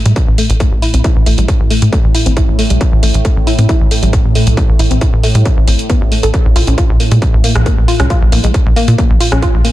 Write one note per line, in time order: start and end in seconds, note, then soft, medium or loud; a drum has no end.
0.00 9.72 A2 medium
0.05 0.14 A2 loud
0.05 0.12 G3 medium
0.05 closed hi-hat medium
0.16 kick loud
0.16 closed hi-hat medium
0.28 0.36 A1 loud
0.38 0.48 A3 loud
0.38 open hi-hat loud
0.50 0.66 A1 loud
0.50 closed hi-hat medium
0.60 0.64 A3 medium
0.60 kick loud
0.60 closed hi-hat medium
0.72 0.80 A1 medium
0.82 0.89 E4 loud
0.82 open hi-hat medium
0.94 1.02 B1 medium
0.94 0.97 C4 medium
0.94 closed hi-hat medium
1.04 1.11 E4 loud
1.04 kick loud
1.04 closed hi-hat medium
1.16 1.24 A1 loud
1.26 1.35 A1 loud
1.26 1.30 A3 loud
1.26 open hi-hat loud
1.38 1.46 A1 loud
1.38 1.44 G3 medium
1.38 closed hi-hat medium
1.48 kick loud
1.48 closed hi-hat medium
1.60 1.68 A1 loud
1.70 1.80 A3 loud
1.70 open hi-hat loud
1.82 1.90 A2 loud
1.82 closed hi-hat medium
1.93 1.96 A3 medium
1.93 kick loud
1.93 closed hi-hat medium
2.04 2.12 A1 loud
2.15 2.21 E4 loud
2.15 open hi-hat loud
2.26 2.43 A1 loud
2.26 2.30 C4 medium
2.26 closed hi-hat medium
2.37 2.43 E4 loud
2.37 kick loud
2.37 closed hi-hat medium
2.48 2.56 A1 medium
2.59 2.63 A3 loud
2.59 open hi-hat loud
2.70 2.78 B1 medium
2.70 2.76 G3 medium
2.70 closed hi-hat medium
2.81 kick loud
2.81 closed hi-hat medium
2.92 3.00 A1 loud
3.03 3.12 A1 loud
3.03 3.13 A3 loud
3.03 open hi-hat loud
3.14 3.22 A1 loud
3.14 closed hi-hat medium
3.25 3.29 A3 medium
3.25 kick loud
3.25 closed hi-hat medium
3.36 3.45 A1 loud
3.47 3.54 E4 loud
3.47 open hi-hat loud
3.58 3.67 A2 loud
3.58 3.62 C4 medium
3.58 closed hi-hat medium
3.69 3.76 E4 loud
3.69 kick loud
3.69 closed hi-hat medium
3.81 3.89 A1 loud
3.91 3.95 A3 loud
3.91 open hi-hat loud
4.03 4.19 A1 loud
4.03 4.09 G3 medium
4.03 closed hi-hat medium
4.13 kick loud
4.13 closed hi-hat medium
4.25 4.33 A1 medium
4.35 4.45 A3 loud
4.35 open hi-hat medium
4.47 4.55 B1 medium
4.47 closed hi-hat medium
4.57 4.61 A3 medium
4.57 kick loud
4.57 closed hi-hat medium
4.69 4.77 A1 loud
4.79 4.88 A1 loud
4.79 4.86 E4 loud
4.79 open hi-hat loud
4.91 4.99 A1 loud
4.91 4.94 C4 medium
4.91 closed hi-hat medium
5.01 5.08 E4 loud
5.01 kick loud
5.01 closed hi-hat medium
5.13 5.21 A1 loud
5.23 5.27 A3 loud
5.23 open hi-hat loud
5.35 5.43 A2 loud
5.35 5.41 G3 medium
5.35 closed hi-hat medium
5.45 kick loud
5.45 closed hi-hat medium
5.57 5.65 A1 loud
5.68 5.76 A1 medium
5.68 5.77 C4 medium
5.68 open hi-hat loud
5.79 closed hi-hat medium
5.90 6.00 B3 loud
5.90 kick loud
5.90 closed hi-hat medium
6.01 6.09 A1 loud
6.12 6.18 A3 medium
6.12 open hi-hat medium
6.23 6.31 A1 medium
6.23 6.29 A4 loud
6.23 closed hi-hat medium
6.34 6.38 A#3 medium
6.34 kick loud
6.34 closed hi-hat medium
6.45 6.53 A#1 loud
6.56 6.65 A#1 loud
6.56 6.62 F4 loud
6.56 open hi-hat loud
6.67 6.75 A#1 loud
6.67 6.71 C#4 medium
6.67 closed hi-hat medium
6.78 6.84 F4 loud
6.78 kick loud
6.78 closed hi-hat medium
6.89 6.97 A#1 loud
7.00 7.06 A#3 medium
7.00 open hi-hat medium
7.11 7.20 A#2 loud
7.11 7.17 G#3 medium
7.11 closed hi-hat medium
7.22 kick loud
7.22 closed hi-hat medium
7.33 7.42 A#1 loud
7.44 7.54 A#3 loud
7.44 open hi-hat loud
7.55 7.72 A#1 loud
7.55 cross-stick medium
7.55 closed hi-hat medium
7.66 7.70 A#3 medium
7.66 kick loud
7.66 closed hi-hat medium
7.78 7.86 A#1 medium
7.88 7.95 F4 loud
7.88 open hi-hat medium
8.00 8.08 C2 medium
8.00 8.03 C#4 medium
8.00 cross-stick medium
8.00 closed hi-hat medium
8.10 8.17 F4 loud
8.10 kick loud
8.10 closed hi-hat medium
8.22 8.30 A#1 loud
8.32 8.41 A#1 loud
8.32 8.39 A#3 medium
8.32 open hi-hat loud
8.44 8.52 A#1 loud
8.44 8.50 G#3 medium
8.44 closed hi-hat medium
8.54 kick loud
8.54 closed hi-hat medium
8.66 8.74 A#1 loud
8.76 8.86 A#3 loud
8.76 open hi-hat medium
8.88 8.96 A#2 loud
8.88 closed hi-hat medium
8.98 9.02 A#3 medium
8.98 kick loud
8.98 closed hi-hat medium
9.10 9.18 A#1 loud
9.20 9.27 F4 loud
9.20 open hi-hat loud
9.32 9.49 A#1 loud
9.32 9.36 C#4 medium
9.32 cross-stick loud
9.32 closed hi-hat medium
9.42 9.49 F4 loud
9.42 kick loud
9.42 closed hi-hat medium
9.54 9.62 A#1 medium
9.65 9.71 A#3 medium
9.65 open hi-hat medium